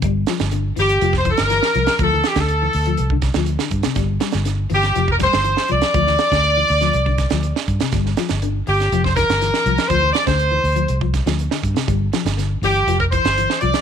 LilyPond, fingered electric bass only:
\new Staff \with { instrumentName = "Fingered electric bass" } { \clef bass \time 4/4 \key g \dorian \tempo 4 = 121 g,,8 r16 g,,8. g,,8 f,,8. g,,8 r16 c,16 r16 | d,8 r16 d,8. d,8 c,8. d,8 r16 g,16 r16 | g,,8 r16 g,,8. g,,8 f,,8. g,,8 r16 c,16 r16 | d,8 r16 d,8. d,8 c,8. d,8 r16 g,16 r16 |
g,,8 r16 g,,8. g,,8 f,,8. g,,8 r16 c,16 r16 | d,8 r16 d,8. d,8 c,8. d,8 r16 g,16 r16 | g,,8 r16 g,,8. g,,8 f,,8. g,,8 r16 c,16 r16 | }